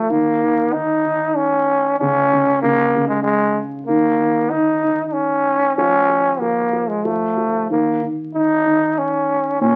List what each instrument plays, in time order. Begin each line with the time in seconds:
Already playing: felt piano F3, trombone A3
0.10 felt piano D#3, trombone A#3
0.42 felt piano D#3
0.73 felt piano D#3, trombone D#4
1.05 felt piano D#3
1.36 trombone C#4
2.00 felt piano C#3, trombone C#4
2.32 felt piano C#3
2.62 felt piano C#3, trombone A#3
2.96 felt piano C#3
3.08 trombone G#3
3.23 trombone G#3
3.87 felt piano D#3, trombone A#3
4.20 felt piano D#3
4.50 felt piano D#3, trombone D#4
4.83 felt piano D#3
5.06 trombone D#4
5.13 trombone C#4
5.76 felt piano F3, trombone C#4
6.09 felt piano F3
6.40 felt piano F3, trombone A#3
6.73 felt piano F3
6.88 trombone G#3
7.05 felt piano F3, trombone A3
7.37 felt piano F3
7.70 felt piano D#3, trombone A#3
8.02 felt piano D#3
8.34 felt piano D#3, trombone D#4
8.65 felt piano D#3
8.98 trombone C#4
9.61 felt piano A#2, trombone C#4